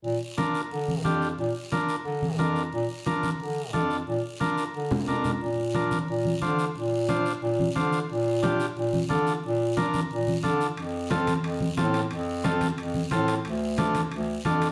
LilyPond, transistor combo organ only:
\new Staff \with { instrumentName = "Transistor combo organ" } { \time 4/4 \key bes \major \tempo 4 = 179 r4 <d' f' bes'>8 r4. <d' f' g'>8 r8 | r4 <d' f' bes'>8 r4. <d' f' bes'>8 r8 | r4 <d' f' bes'>8 r4. <d' f' a'>8 r8 | r4 <d' f' bes'>8 r4. <d' f' bes'>8 r8 |
r4 <d' f' bes'>8 r4. <d' f' c''>8 r8 | r4 <d' f' c''>8 r4. <d' f' c''>8 r8 | r4 <d' f' g'>8 r4. <d' f' a'>8 r8 | r4 <d' f' bes'>8 r4. <d' f' a'>8 r8 |
r4 <c' f' a'>8 r4. <c' f' a'>8 r8 | r4 <c' f' a'>8 r4. <c' f' a'>8 r8 | r4 <d' f' a'>8 r4. <d' f' a'>8 r8 | }